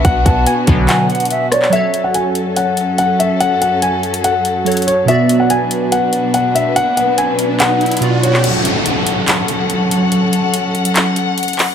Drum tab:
CC |--------------------------------|--------------------------------|--------------------------------|--------------------------------|
HH |x---x---x---x---x---xxxxx---x---|x---x---x---x---x---x---x---x---|x---x---x---x-x-x---x---xxxxx---|x---x---x---x---x---x---x---x---|
CP |----------------x-------------x-|--------------------------------|--------------------------------|--------------------------------|
SD |----------------------------r---|--------------------------------|--------------------------------|--------------------------------|
BD |o---o-------o-------------------|--------------------------------|--------------------------------|--------------------------------|

CC |--------------------------------|x-------------------------------|--------------------------------|
HH |x---x---x---x---x---xxxxx---x---|x---x---x---x---x---x---x---x---|x---x---x---x-x-x---x---xxxxo---|
CP |----------------x-------------x-|----------------x---------------|----------------x-----------x---|
SD |--------------------------------|--------------------------------|--------------------------------|
BD |--------------------------------|--------------------------------|--------------------------------|